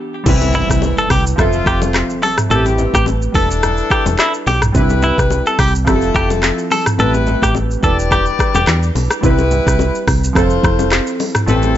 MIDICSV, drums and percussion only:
0, 0, Header, 1, 2, 480
1, 0, Start_track
1, 0, Key_signature, 0, "major"
1, 0, Tempo, 560748
1, 224, Time_signature, 4, 2, 24, 8
1, 10079, End_track
2, 0, Start_track
2, 0, Title_t, "Drums"
2, 222, Note_on_c, 9, 64, 80
2, 224, Note_on_c, 9, 49, 93
2, 225, Note_on_c, 9, 36, 113
2, 225, Note_on_c, 9, 82, 75
2, 307, Note_off_c, 9, 64, 0
2, 310, Note_off_c, 9, 36, 0
2, 310, Note_off_c, 9, 49, 0
2, 311, Note_off_c, 9, 82, 0
2, 352, Note_on_c, 9, 82, 58
2, 357, Note_on_c, 9, 61, 65
2, 438, Note_off_c, 9, 82, 0
2, 442, Note_off_c, 9, 61, 0
2, 461, Note_on_c, 9, 82, 60
2, 462, Note_on_c, 9, 64, 79
2, 546, Note_off_c, 9, 82, 0
2, 547, Note_off_c, 9, 64, 0
2, 596, Note_on_c, 9, 36, 105
2, 603, Note_on_c, 9, 82, 111
2, 604, Note_on_c, 9, 37, 89
2, 681, Note_off_c, 9, 36, 0
2, 688, Note_off_c, 9, 82, 0
2, 690, Note_off_c, 9, 37, 0
2, 701, Note_on_c, 9, 60, 64
2, 701, Note_on_c, 9, 61, 68
2, 710, Note_on_c, 9, 82, 79
2, 787, Note_off_c, 9, 60, 0
2, 787, Note_off_c, 9, 61, 0
2, 795, Note_off_c, 9, 82, 0
2, 837, Note_on_c, 9, 82, 55
2, 922, Note_off_c, 9, 82, 0
2, 943, Note_on_c, 9, 37, 104
2, 943, Note_on_c, 9, 46, 80
2, 943, Note_on_c, 9, 82, 62
2, 944, Note_on_c, 9, 36, 92
2, 1029, Note_off_c, 9, 37, 0
2, 1029, Note_off_c, 9, 46, 0
2, 1029, Note_off_c, 9, 82, 0
2, 1030, Note_off_c, 9, 36, 0
2, 1083, Note_on_c, 9, 82, 109
2, 1169, Note_off_c, 9, 82, 0
2, 1183, Note_on_c, 9, 36, 89
2, 1187, Note_on_c, 9, 82, 82
2, 1188, Note_on_c, 9, 37, 99
2, 1191, Note_on_c, 9, 64, 78
2, 1268, Note_off_c, 9, 36, 0
2, 1272, Note_off_c, 9, 82, 0
2, 1273, Note_off_c, 9, 37, 0
2, 1276, Note_off_c, 9, 64, 0
2, 1307, Note_on_c, 9, 82, 49
2, 1392, Note_off_c, 9, 82, 0
2, 1423, Note_on_c, 9, 36, 93
2, 1426, Note_on_c, 9, 82, 59
2, 1431, Note_on_c, 9, 37, 105
2, 1508, Note_off_c, 9, 36, 0
2, 1512, Note_off_c, 9, 82, 0
2, 1516, Note_off_c, 9, 37, 0
2, 1556, Note_on_c, 9, 61, 93
2, 1557, Note_on_c, 9, 82, 86
2, 1641, Note_off_c, 9, 61, 0
2, 1642, Note_off_c, 9, 82, 0
2, 1661, Note_on_c, 9, 82, 70
2, 1664, Note_on_c, 9, 37, 89
2, 1664, Note_on_c, 9, 39, 86
2, 1666, Note_on_c, 9, 60, 75
2, 1746, Note_off_c, 9, 82, 0
2, 1749, Note_off_c, 9, 37, 0
2, 1749, Note_off_c, 9, 39, 0
2, 1751, Note_off_c, 9, 60, 0
2, 1795, Note_on_c, 9, 82, 60
2, 1881, Note_off_c, 9, 82, 0
2, 1906, Note_on_c, 9, 46, 83
2, 1906, Note_on_c, 9, 61, 76
2, 1906, Note_on_c, 9, 82, 57
2, 1992, Note_off_c, 9, 46, 0
2, 1992, Note_off_c, 9, 61, 0
2, 1992, Note_off_c, 9, 82, 0
2, 2034, Note_on_c, 9, 37, 102
2, 2038, Note_on_c, 9, 82, 99
2, 2041, Note_on_c, 9, 45, 96
2, 2120, Note_off_c, 9, 37, 0
2, 2124, Note_off_c, 9, 82, 0
2, 2127, Note_off_c, 9, 45, 0
2, 2142, Note_on_c, 9, 64, 79
2, 2145, Note_on_c, 9, 82, 77
2, 2228, Note_off_c, 9, 64, 0
2, 2231, Note_off_c, 9, 82, 0
2, 2273, Note_on_c, 9, 82, 57
2, 2276, Note_on_c, 9, 61, 63
2, 2358, Note_off_c, 9, 82, 0
2, 2361, Note_off_c, 9, 61, 0
2, 2381, Note_on_c, 9, 82, 56
2, 2382, Note_on_c, 9, 64, 79
2, 2467, Note_off_c, 9, 82, 0
2, 2468, Note_off_c, 9, 64, 0
2, 2516, Note_on_c, 9, 36, 101
2, 2523, Note_on_c, 9, 82, 109
2, 2525, Note_on_c, 9, 37, 92
2, 2602, Note_off_c, 9, 36, 0
2, 2609, Note_off_c, 9, 82, 0
2, 2610, Note_off_c, 9, 37, 0
2, 2620, Note_on_c, 9, 60, 67
2, 2620, Note_on_c, 9, 61, 68
2, 2630, Note_on_c, 9, 82, 76
2, 2706, Note_off_c, 9, 60, 0
2, 2706, Note_off_c, 9, 61, 0
2, 2716, Note_off_c, 9, 82, 0
2, 2757, Note_on_c, 9, 82, 54
2, 2842, Note_off_c, 9, 82, 0
2, 2864, Note_on_c, 9, 36, 95
2, 2864, Note_on_c, 9, 46, 85
2, 2864, Note_on_c, 9, 82, 59
2, 2949, Note_off_c, 9, 46, 0
2, 2949, Note_off_c, 9, 82, 0
2, 2950, Note_off_c, 9, 36, 0
2, 3003, Note_on_c, 9, 82, 109
2, 3089, Note_off_c, 9, 82, 0
2, 3107, Note_on_c, 9, 82, 83
2, 3108, Note_on_c, 9, 37, 104
2, 3110, Note_on_c, 9, 64, 74
2, 3193, Note_off_c, 9, 82, 0
2, 3194, Note_off_c, 9, 37, 0
2, 3196, Note_off_c, 9, 64, 0
2, 3228, Note_on_c, 9, 82, 50
2, 3313, Note_off_c, 9, 82, 0
2, 3343, Note_on_c, 9, 36, 96
2, 3347, Note_on_c, 9, 82, 59
2, 3351, Note_on_c, 9, 37, 103
2, 3429, Note_off_c, 9, 36, 0
2, 3432, Note_off_c, 9, 82, 0
2, 3437, Note_off_c, 9, 37, 0
2, 3476, Note_on_c, 9, 61, 90
2, 3477, Note_on_c, 9, 82, 91
2, 3561, Note_off_c, 9, 61, 0
2, 3562, Note_off_c, 9, 82, 0
2, 3580, Note_on_c, 9, 82, 69
2, 3583, Note_on_c, 9, 37, 87
2, 3583, Note_on_c, 9, 39, 87
2, 3586, Note_on_c, 9, 60, 77
2, 3666, Note_off_c, 9, 82, 0
2, 3669, Note_off_c, 9, 37, 0
2, 3669, Note_off_c, 9, 39, 0
2, 3672, Note_off_c, 9, 60, 0
2, 3714, Note_on_c, 9, 82, 60
2, 3800, Note_off_c, 9, 82, 0
2, 3826, Note_on_c, 9, 46, 80
2, 3826, Note_on_c, 9, 61, 75
2, 3826, Note_on_c, 9, 82, 60
2, 3911, Note_off_c, 9, 46, 0
2, 3911, Note_off_c, 9, 82, 0
2, 3912, Note_off_c, 9, 61, 0
2, 3953, Note_on_c, 9, 37, 100
2, 3958, Note_on_c, 9, 82, 96
2, 3961, Note_on_c, 9, 45, 97
2, 4039, Note_off_c, 9, 37, 0
2, 4043, Note_off_c, 9, 82, 0
2, 4046, Note_off_c, 9, 45, 0
2, 4062, Note_on_c, 9, 64, 79
2, 4064, Note_on_c, 9, 36, 110
2, 4064, Note_on_c, 9, 82, 77
2, 4148, Note_off_c, 9, 64, 0
2, 4150, Note_off_c, 9, 36, 0
2, 4150, Note_off_c, 9, 82, 0
2, 4191, Note_on_c, 9, 82, 58
2, 4196, Note_on_c, 9, 61, 64
2, 4276, Note_off_c, 9, 82, 0
2, 4282, Note_off_c, 9, 61, 0
2, 4300, Note_on_c, 9, 82, 56
2, 4302, Note_on_c, 9, 64, 79
2, 4386, Note_off_c, 9, 82, 0
2, 4388, Note_off_c, 9, 64, 0
2, 4435, Note_on_c, 9, 36, 101
2, 4442, Note_on_c, 9, 82, 102
2, 4444, Note_on_c, 9, 37, 93
2, 4521, Note_off_c, 9, 36, 0
2, 4528, Note_off_c, 9, 82, 0
2, 4529, Note_off_c, 9, 37, 0
2, 4541, Note_on_c, 9, 60, 64
2, 4541, Note_on_c, 9, 61, 68
2, 4549, Note_on_c, 9, 82, 76
2, 4627, Note_off_c, 9, 60, 0
2, 4627, Note_off_c, 9, 61, 0
2, 4635, Note_off_c, 9, 82, 0
2, 4676, Note_on_c, 9, 82, 56
2, 4761, Note_off_c, 9, 82, 0
2, 4783, Note_on_c, 9, 37, 102
2, 4783, Note_on_c, 9, 46, 84
2, 4783, Note_on_c, 9, 82, 63
2, 4784, Note_on_c, 9, 36, 95
2, 4868, Note_off_c, 9, 37, 0
2, 4868, Note_off_c, 9, 46, 0
2, 4868, Note_off_c, 9, 82, 0
2, 4869, Note_off_c, 9, 36, 0
2, 4923, Note_on_c, 9, 82, 107
2, 5009, Note_off_c, 9, 82, 0
2, 5023, Note_on_c, 9, 36, 87
2, 5027, Note_on_c, 9, 82, 84
2, 5028, Note_on_c, 9, 37, 101
2, 5030, Note_on_c, 9, 64, 77
2, 5108, Note_off_c, 9, 36, 0
2, 5112, Note_off_c, 9, 82, 0
2, 5113, Note_off_c, 9, 37, 0
2, 5115, Note_off_c, 9, 64, 0
2, 5147, Note_on_c, 9, 82, 50
2, 5232, Note_off_c, 9, 82, 0
2, 5263, Note_on_c, 9, 36, 95
2, 5266, Note_on_c, 9, 82, 56
2, 5271, Note_on_c, 9, 37, 105
2, 5348, Note_off_c, 9, 36, 0
2, 5352, Note_off_c, 9, 82, 0
2, 5356, Note_off_c, 9, 37, 0
2, 5396, Note_on_c, 9, 61, 91
2, 5397, Note_on_c, 9, 82, 89
2, 5482, Note_off_c, 9, 61, 0
2, 5482, Note_off_c, 9, 82, 0
2, 5500, Note_on_c, 9, 82, 72
2, 5503, Note_on_c, 9, 37, 84
2, 5503, Note_on_c, 9, 39, 90
2, 5506, Note_on_c, 9, 60, 76
2, 5586, Note_off_c, 9, 82, 0
2, 5589, Note_off_c, 9, 37, 0
2, 5589, Note_off_c, 9, 39, 0
2, 5591, Note_off_c, 9, 60, 0
2, 5635, Note_on_c, 9, 82, 62
2, 5720, Note_off_c, 9, 82, 0
2, 5745, Note_on_c, 9, 61, 75
2, 5746, Note_on_c, 9, 46, 81
2, 5746, Note_on_c, 9, 82, 58
2, 5831, Note_off_c, 9, 61, 0
2, 5832, Note_off_c, 9, 46, 0
2, 5832, Note_off_c, 9, 82, 0
2, 5874, Note_on_c, 9, 37, 105
2, 5878, Note_on_c, 9, 82, 101
2, 5881, Note_on_c, 9, 45, 96
2, 5959, Note_off_c, 9, 37, 0
2, 5964, Note_off_c, 9, 82, 0
2, 5967, Note_off_c, 9, 45, 0
2, 5980, Note_on_c, 9, 64, 82
2, 5985, Note_on_c, 9, 82, 76
2, 6066, Note_off_c, 9, 64, 0
2, 6070, Note_off_c, 9, 82, 0
2, 6112, Note_on_c, 9, 82, 57
2, 6115, Note_on_c, 9, 61, 66
2, 6197, Note_off_c, 9, 82, 0
2, 6201, Note_off_c, 9, 61, 0
2, 6220, Note_on_c, 9, 82, 57
2, 6221, Note_on_c, 9, 64, 78
2, 6306, Note_off_c, 9, 64, 0
2, 6306, Note_off_c, 9, 82, 0
2, 6356, Note_on_c, 9, 36, 97
2, 6362, Note_on_c, 9, 82, 109
2, 6364, Note_on_c, 9, 37, 94
2, 6441, Note_off_c, 9, 36, 0
2, 6448, Note_off_c, 9, 82, 0
2, 6450, Note_off_c, 9, 37, 0
2, 6460, Note_on_c, 9, 60, 67
2, 6460, Note_on_c, 9, 61, 67
2, 6470, Note_on_c, 9, 82, 78
2, 6546, Note_off_c, 9, 60, 0
2, 6546, Note_off_c, 9, 61, 0
2, 6556, Note_off_c, 9, 82, 0
2, 6597, Note_on_c, 9, 82, 57
2, 6683, Note_off_c, 9, 82, 0
2, 6704, Note_on_c, 9, 36, 90
2, 6704, Note_on_c, 9, 82, 58
2, 6789, Note_off_c, 9, 82, 0
2, 6790, Note_off_c, 9, 36, 0
2, 6843, Note_on_c, 9, 82, 114
2, 6929, Note_off_c, 9, 82, 0
2, 6943, Note_on_c, 9, 36, 88
2, 6947, Note_on_c, 9, 82, 76
2, 6948, Note_on_c, 9, 37, 97
2, 6950, Note_on_c, 9, 64, 77
2, 7029, Note_off_c, 9, 36, 0
2, 7033, Note_off_c, 9, 82, 0
2, 7034, Note_off_c, 9, 37, 0
2, 7035, Note_off_c, 9, 64, 0
2, 7067, Note_on_c, 9, 82, 52
2, 7153, Note_off_c, 9, 82, 0
2, 7183, Note_on_c, 9, 36, 93
2, 7187, Note_on_c, 9, 82, 59
2, 7191, Note_on_c, 9, 37, 98
2, 7269, Note_off_c, 9, 36, 0
2, 7272, Note_off_c, 9, 82, 0
2, 7277, Note_off_c, 9, 37, 0
2, 7316, Note_on_c, 9, 61, 92
2, 7317, Note_on_c, 9, 82, 93
2, 7402, Note_off_c, 9, 61, 0
2, 7403, Note_off_c, 9, 82, 0
2, 7421, Note_on_c, 9, 82, 68
2, 7424, Note_on_c, 9, 37, 85
2, 7424, Note_on_c, 9, 39, 89
2, 7426, Note_on_c, 9, 60, 77
2, 7507, Note_off_c, 9, 82, 0
2, 7510, Note_off_c, 9, 37, 0
2, 7510, Note_off_c, 9, 39, 0
2, 7512, Note_off_c, 9, 60, 0
2, 7556, Note_on_c, 9, 82, 59
2, 7641, Note_off_c, 9, 82, 0
2, 7666, Note_on_c, 9, 46, 79
2, 7666, Note_on_c, 9, 61, 77
2, 7666, Note_on_c, 9, 82, 58
2, 7752, Note_off_c, 9, 46, 0
2, 7752, Note_off_c, 9, 61, 0
2, 7752, Note_off_c, 9, 82, 0
2, 7794, Note_on_c, 9, 37, 99
2, 7798, Note_on_c, 9, 82, 99
2, 7880, Note_off_c, 9, 37, 0
2, 7884, Note_off_c, 9, 82, 0
2, 7901, Note_on_c, 9, 64, 79
2, 7905, Note_on_c, 9, 36, 115
2, 7905, Note_on_c, 9, 82, 76
2, 7987, Note_off_c, 9, 64, 0
2, 7990, Note_off_c, 9, 36, 0
2, 7990, Note_off_c, 9, 82, 0
2, 8032, Note_on_c, 9, 82, 56
2, 8035, Note_on_c, 9, 61, 61
2, 8118, Note_off_c, 9, 82, 0
2, 8121, Note_off_c, 9, 61, 0
2, 8141, Note_on_c, 9, 82, 59
2, 8142, Note_on_c, 9, 64, 77
2, 8226, Note_off_c, 9, 82, 0
2, 8227, Note_off_c, 9, 64, 0
2, 8276, Note_on_c, 9, 36, 100
2, 8283, Note_on_c, 9, 82, 109
2, 8284, Note_on_c, 9, 37, 94
2, 8362, Note_off_c, 9, 36, 0
2, 8368, Note_off_c, 9, 82, 0
2, 8370, Note_off_c, 9, 37, 0
2, 8381, Note_on_c, 9, 60, 67
2, 8381, Note_on_c, 9, 61, 67
2, 8391, Note_on_c, 9, 82, 82
2, 8467, Note_off_c, 9, 60, 0
2, 8467, Note_off_c, 9, 61, 0
2, 8476, Note_off_c, 9, 82, 0
2, 8518, Note_on_c, 9, 82, 58
2, 8604, Note_off_c, 9, 82, 0
2, 8625, Note_on_c, 9, 36, 98
2, 8625, Note_on_c, 9, 37, 99
2, 8625, Note_on_c, 9, 46, 83
2, 8625, Note_on_c, 9, 82, 61
2, 8710, Note_off_c, 9, 36, 0
2, 8710, Note_off_c, 9, 37, 0
2, 8710, Note_off_c, 9, 46, 0
2, 8710, Note_off_c, 9, 82, 0
2, 8764, Note_on_c, 9, 82, 112
2, 8850, Note_off_c, 9, 82, 0
2, 8863, Note_on_c, 9, 36, 88
2, 8869, Note_on_c, 9, 82, 77
2, 8870, Note_on_c, 9, 37, 101
2, 8870, Note_on_c, 9, 64, 77
2, 8949, Note_off_c, 9, 36, 0
2, 8954, Note_off_c, 9, 82, 0
2, 8955, Note_off_c, 9, 37, 0
2, 8956, Note_off_c, 9, 64, 0
2, 8989, Note_on_c, 9, 82, 48
2, 9074, Note_off_c, 9, 82, 0
2, 9103, Note_on_c, 9, 36, 90
2, 9107, Note_on_c, 9, 82, 57
2, 9112, Note_on_c, 9, 37, 105
2, 9189, Note_off_c, 9, 36, 0
2, 9193, Note_off_c, 9, 82, 0
2, 9197, Note_off_c, 9, 37, 0
2, 9236, Note_on_c, 9, 61, 87
2, 9238, Note_on_c, 9, 82, 88
2, 9322, Note_off_c, 9, 61, 0
2, 9323, Note_off_c, 9, 82, 0
2, 9341, Note_on_c, 9, 82, 67
2, 9344, Note_on_c, 9, 37, 90
2, 9344, Note_on_c, 9, 39, 86
2, 9346, Note_on_c, 9, 60, 77
2, 9426, Note_off_c, 9, 82, 0
2, 9429, Note_off_c, 9, 37, 0
2, 9429, Note_off_c, 9, 39, 0
2, 9432, Note_off_c, 9, 60, 0
2, 9476, Note_on_c, 9, 82, 59
2, 9561, Note_off_c, 9, 82, 0
2, 9586, Note_on_c, 9, 46, 83
2, 9586, Note_on_c, 9, 82, 58
2, 9587, Note_on_c, 9, 61, 75
2, 9672, Note_off_c, 9, 46, 0
2, 9672, Note_off_c, 9, 61, 0
2, 9672, Note_off_c, 9, 82, 0
2, 9714, Note_on_c, 9, 37, 97
2, 9718, Note_on_c, 9, 82, 102
2, 9721, Note_on_c, 9, 45, 95
2, 9799, Note_off_c, 9, 37, 0
2, 9804, Note_off_c, 9, 82, 0
2, 9807, Note_off_c, 9, 45, 0
2, 9821, Note_on_c, 9, 64, 81
2, 9825, Note_on_c, 9, 82, 77
2, 9907, Note_off_c, 9, 64, 0
2, 9911, Note_off_c, 9, 82, 0
2, 9952, Note_on_c, 9, 82, 59
2, 9956, Note_on_c, 9, 61, 64
2, 10038, Note_off_c, 9, 82, 0
2, 10041, Note_off_c, 9, 61, 0
2, 10079, End_track
0, 0, End_of_file